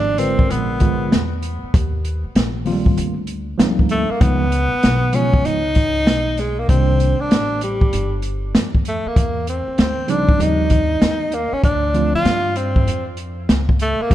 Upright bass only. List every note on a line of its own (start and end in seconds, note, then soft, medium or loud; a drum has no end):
0.00 0.47 G#1 medium
0.50 1.09 A#1 medium
1.13 1.61 E2 medium
1.63 muted upright bass stroke soft
1.74 2.22 D#2 loud
2.24 muted upright bass stroke soft
2.35 2.94 A#1 medium
2.97 3.56 D2 medium
3.59 4.07 D2 medium
4.10 muted upright bass stroke soft
4.21 4.69 C#2 loud
4.72 muted upright bass stroke soft
4.84 5.42 B1 medium
5.46 6.07 C#2 medium
6.07 6.66 B1 medium
6.69 7.17 C2 loud
7.20 muted upright bass stroke soft
7.31 7.90 A1 loud
7.93 8.51 G1 medium
8.55 9.02 F2 medium
9.06 muted upright bass stroke soft
9.17 9.64 E2 medium
9.68 muted upright bass stroke soft
9.78 10.37 D2 medium
10.40 10.98 D#2 medium
11.02 11.50 D#2 medium
11.52 muted upright bass stroke soft
11.64 12.12 D2 loud
12.14 muted upright bass stroke soft
12.25 12.84 G2 medium
12.87 13.46 F2 medium
13.49 13.97 C#2 medium
13.99 muted upright bass stroke soft
14.11 14.15 C2 loud